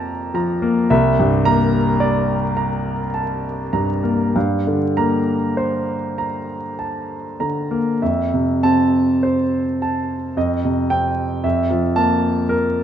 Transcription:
grand piano
Already playing: F2 A#3 D5 A5 A#5
0.34 F3 A#5
0.62 A#3
0.90 C2 E5
1.19 G2
1.45 A#3 A#5
2.00 D5
2.57 A#5
3.14 A5
3.73 G2 A#5
4.03 A#3
4.36 G2 F5
4.67 D3
4.97 A#3 A#5
5.57 C5
6.18 A#5
6.79 A5
7.40 D3 A#5
7.71 A#3
8.02 F2 E5
8.34 C3
8.63 C4 A5
9.23 C5
9.82 A5
10.37 F2 D#5
10.64 C3
10.90 C4 G5
11.44 F2 E5
11.70 F3
11.96 A#3 A5
12.49 A#4

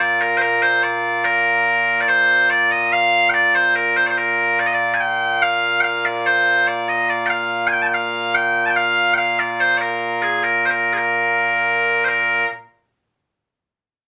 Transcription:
bagpipes
Already playing: A#2 A#3 F4
0.00 D5
0.21 A#4
0.37 C5
0.42 A#4
0.62 C5
0.83 D5
1.25 A#4
2.01 D5
2.08 C5
2.50 D5
2.71 D#5
2.93 F5
3.30 G5
3.34 D5
3.55 C5
3.76 A#4
3.97 C5
4.06 C5 D5
4.18 A#4
4.60 D5
4.66 D#5
4.74 D5
4.94 G#5
5.00 G5
5.42 F5
5.81 F5 G5
6.05 D5
6.26 C5
6.67 D5
6.89 D#5
7.09 D5
7.26 F5 G5
7.67 G#5
7.72 G5
7.82 A5
7.86 G5
7.94 F5
8.35 G5
8.66 G5 A5
8.76 F5
9.14 F5 G5
9.39 D5
9.60 C5
9.77 A#4 D5
10.22 G#4
10.43 A#4
10.66 C5
10.70 A#4
10.93 G#4
10.97 A#4
12.05 A#4 C5

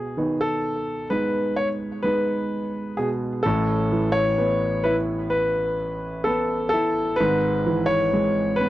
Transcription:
grand piano
Already playing: B2 G#4
0.17 D#3 B3 D#4
0.41 A4
1.10 G#3 B3 D#4 B4
1.56 C#5
2.03 G#3 B3 D#4 B4
2.97 B2 G#4
3.43 A1 A2 A4
3.92 E3
4.12 C#5
4.38 B3
4.84 E4 B4
5.30 B4
6.24 B3 A4
6.69 A4
6.74 E4
7.16 B4
7.20 G#1 G#2
7.66 E3
7.86 C#5
8.13 G#3
8.56 B4
8.61 B3

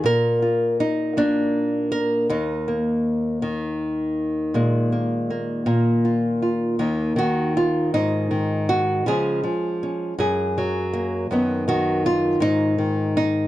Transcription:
nylon-string guitar
0.04 A#2 A#4
0.42 F4
0.80 D#4
1.17 A#3 D4
1.92 A#4
2.29 D#2 D#4
2.68 A#3
3.42 D#3
4.54 A#2 G#3 A#3
4.92 A#3
5.30 A#3
5.66 A#2 A#3
6.05 F4
6.42 F4
6.79 D#2 D#3 A#3 D#4
7.16 D#3 F#4
7.57 F4
7.94 G#2 D#4
8.31 D#3
8.69 F#4
9.06 C#3 F3 G#3 C#4 G#4
9.44 F3
9.83 C#4
10.19 F#2 G#4
10.58 F#3
10.93 A#3
11.31 F#2 D#3 B3 D#4
11.68 D#3 F#4
12.06 F4
12.40 G#2 D#4
12.78 D#3
13.17 D#4

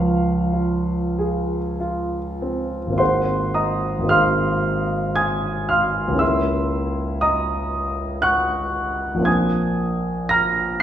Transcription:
grand piano
Already playing: C#2 F3 C#5 F5
0.53 F4
1.19 G#4
1.80 F4
2.42 C4
2.87 G#1 A#3
2.92 C4 D#4
2.98 G#4 C5 F#5 C6
3.54 D#5 A#5 D#6
3.99 G#1 A#3
4.04 C4 D#4
4.08 G#4 F5 C6 F6
5.16 G#5 D#6 G#6
5.69 F5 C6 F6
6.08 C#2 A#3
6.14 C#4 E4
6.19 G#4 E5 C6 E6
7.21 D#5 A#5 D#6
8.22 F#5 C#6 F#6
9.15 A#1 A#3
9.20 C4 D4
9.25 A#4 G#5 D#6 G#6
10.29 A#5 F6 A#6

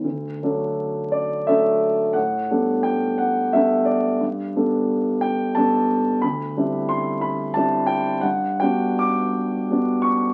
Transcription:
grand piano
0.04 D2
0.43 F#3 A3 D4 A4
1.12 D5
1.47 F#3 A3 D4 A4 E5
2.13 A2 F#5
2.51 G3 B3 D4 A4
2.83 G5
3.18 F#5
3.53 G3 B3 D4 A4 E5
3.85 D5
4.20 G2
4.56 G3 B3 D4 A4
5.21 G5
5.55 G3 B3 D4 A4 A5
6.22 D2 B5
6.57 G3 C4 D4 E4
6.89 C6
7.21 B5
7.54 G3 C4 D4 E4 A5
7.86 G5
8.21 G2 F#5
8.60 G3 B3 D4 F#4 G5
8.99 D6
9.70 G3 B3 D4 F#4
10.02 C#6

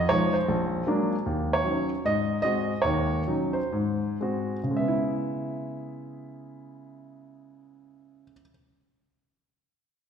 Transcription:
grand piano
0.09 F3 G#3 D#4 C#5
0.33 C5
0.48 A#1
0.87 F#3 G#3 A#3 D4
1.26 D#2
1.53 C#5
1.64 F#3 C#4 D#4
2.05 G#2 D#5
2.42 G#3 C4 F#4 D#5
2.82 D#2 D#3 C#5
3.27 F#3 C#4 D#4
3.53 C5
3.73 G#2
4.21 G#3 C4 F#4
4.63 C#3
4.71 G#3
4.77 B3 E5
4.88 E4

